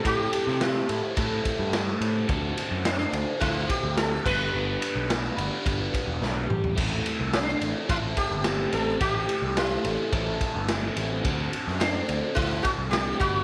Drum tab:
CC |----------------|--------------x-|----------------|x---------------|
RD |x-x-x-x-x-x-x-x-|x-x-x-x-x-x-x---|--x-x-x-x-x-----|x-x-x-x-x-x-x-x-|
SD |---oo-------o---|----o-------o---|----o-------o---|----o-------o---|
T2 |----------------|----------------|--------------o-|----------------|
FT |----------------|----------------|---------------o|----------------|
BD |o-------o-o-----|o-------o-o---o-|--------o-o-----|o-------o-o-----|

CC |----------------|----------------|
RD |x-x-x-x-x-x-x-x-|x-x-x-x-x-x-x-x-|
SD |----o-------o---|---oo-------o---|
T2 |----------------|----------------|
FT |----------------|----------------|
BD |o-------o-o-----|o-------o-o---o-|